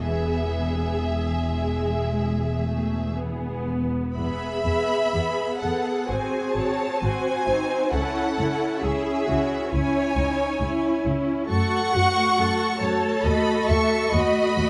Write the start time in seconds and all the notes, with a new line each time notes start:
0.04 E1 E2 B3 G#4 E5
1.09 G#3
2.68 A3
3.19 B3
4.17 E2 B3 G#4 E5 B5
4.65 E2 B3 G#4
5.12 E2 B3 G#4
5.61 E2 B3 G#4 A4 F#5
6.08 G#1 C4 F#4 G#4 C5 G#5
6.54 G#1 C4 F#4 C#5 A5
7.01 G#1 C4 F#4 C5 G#5
7.48 G#1 C4 D#4 F#4
7.91 C#2 C#4 E4 A4 F#5
8.38 C#2 C#4 E4
8.83 C#2 C#4 E4 G#4 E5
9.29 C#2 C#4 E4 F#4
9.71 C#2 C#4 E4 C#5 G#5
10.16 C#2 C#4 D#4 E4
10.60 C#2 C#4 E4
11.04 C#2 C#4 E4
11.49 F#2 A3 F#4 A4 F#5 C#6
11.94 F#2 A3 F#4
12.38 F#2 A3 F#4 A4
12.81 F#2 A3 F#4 A4 C#5 A5
13.24 D#2 A3 F#4 D#5 B5
13.67 D#2 A3 F#4 E5 C#6
14.12 D#2 A3 F#4 D#5 B5
14.57 D#2 A3 F#4